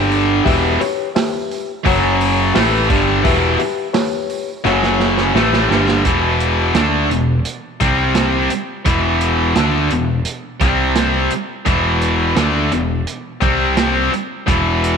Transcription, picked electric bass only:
0.00 0.40 G1 loud
0.46 0.78 E1 loud
1.85 2.51 F#1 medium
2.55 2.87 A1 loud
2.90 3.22 G1 medium
3.25 3.57 E1 medium
3.60 muted picked electric bass stroke soft
4.65 5.31 F#1 medium
5.34 5.67 A1 medium
5.69 6.02 G1 medium
6.05 6.71 E1 medium
6.74 7.07 D2 medium
7.10 7.42 E1 medium
7.81 8.47 C2 medium
8.50 muted picked electric bass stroke soft
8.86 9.52 E1 medium
9.56 9.88 D2 medium
9.92 10.24 E1 medium
10.61 11.27 C2 medium
11.31 muted picked electric bass stroke soft
11.66 12.33 E1 medium
12.36 12.69 D2 medium
12.71 13.04 E1 medium
13.42 14.08 C2 medium
14.11 muted picked electric bass stroke soft
14.48 14.97 E1 medium

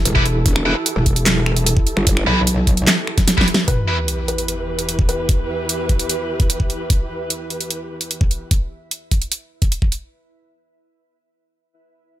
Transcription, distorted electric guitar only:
0.15 0.23 E4 medium
0.15 0.23 G4 medium
0.15 0.23 B4 medium
0.66 0.73 E4 medium
0.66 0.73 G4 medium
0.66 0.73 B4 medium
2.27 2.39 E4 loud
2.27 2.39 G4 medium
2.27 2.39 B4 loud
3.37 3.45 E4 medium
3.37 3.45 G4 medium
3.37 3.45 B4 medium
3.88 3.95 E4 medium
3.88 3.95 G4 medium
3.88 3.95 B4 medium

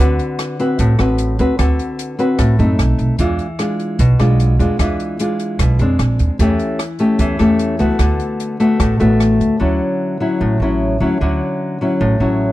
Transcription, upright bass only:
0.00 0.18 D2 medium
0.79 0.98 A1 medium
0.99 1.37 A1 medium
1.39 1.49 D2 medium
1.59 1.78 D2 medium
2.39 2.58 A1 medium
2.59 2.78 F#2 medium
2.79 2.98 B1 medium
2.98 3.08 B1 medium
3.19 3.38 E2 medium
3.99 4.18 B1 medium
4.19 4.57 B1 medium
4.59 4.69 E2 medium
4.79 4.98 E2 medium
5.59 5.78 B1 medium
5.79 5.98 F2 medium
5.99 6.18 A#1 medium
6.20 6.29 D#2 medium
6.39 6.58 E2 medium
7.19 7.38 E2 medium
7.40 7.77 E2 medium
7.80 7.89 C#2 medium
7.99 8.18 D2 medium
8.80 8.98 A1 medium
9.00 9.37 A1 medium
9.41 9.50 D2 medium
9.61 9.79 D2 medium
10.41 10.59 A1 medium
10.60 10.97 A1 medium
11.00 11.09 D2 medium
11.21 11.39 D2 medium
12.01 12.19 A1 medium
12.20 12.52 A1 medium

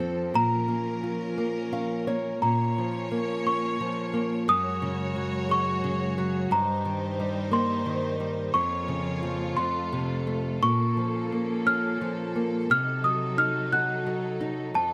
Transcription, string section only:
0.00 2.38 F3 medium
0.00 0.33 A4 medium
0.32 2.39 C#4 medium
0.32 2.39 A#4 medium
2.41 4.46 A#3 medium
2.41 4.46 C#4 medium
2.41 4.46 C#5 medium
4.49 6.50 G#3 medium
4.49 6.50 F#4 medium
4.49 6.50 C#5 medium
6.52 8.52 G3 medium
6.52 8.53 D#4 medium
6.52 8.52 C5 medium
8.54 9.56 F3 medium
8.54 9.56 A#3 medium
8.54 10.60 F4 medium
8.54 9.56 C#5 medium
9.58 10.62 A3 medium
9.58 14.70 A4 medium
10.62 12.67 A#3 medium
10.62 12.67 C#4 medium
12.70 14.72 F#3 medium
12.70 14.72 D#4 medium
14.73 14.93 F3 medium
14.73 14.93 D#4 medium
14.73 14.93 A4 medium

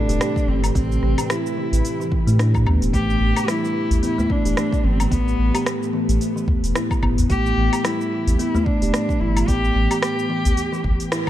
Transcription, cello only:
0.00 0.50 D4 loud
0.48 0.75 C4 medium
0.75 1.32 C4 medium
1.30 2.39 E4 medium
2.94 3.51 G4 loud
3.49 4.03 E4 loud
4.04 4.33 E4 loud
4.31 4.87 D4 loud
4.86 5.14 C4 medium
5.13 5.69 B3 loud
5.67 6.76 A3 medium
7.30 7.86 G4 loud
7.85 8.39 E4 loud
8.39 8.67 E4 loud
8.66 9.22 D4 medium
9.20 9.49 E4 loud
9.47 10.02 G4 loud
10.03 11.08 G4 loud

